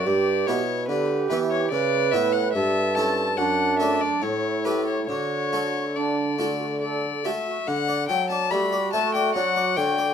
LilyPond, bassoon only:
\new Staff \with { instrumentName = "Bassoon" } { \clef bass \time 3/4 \key d \major \tempo 4 = 72 g,8 b,8 d8 e8 cis8 a,8 | g,4 fis,4 a,4 | d2~ d8 r8 | d8 fis8 g8 a8 fis8 d8 | }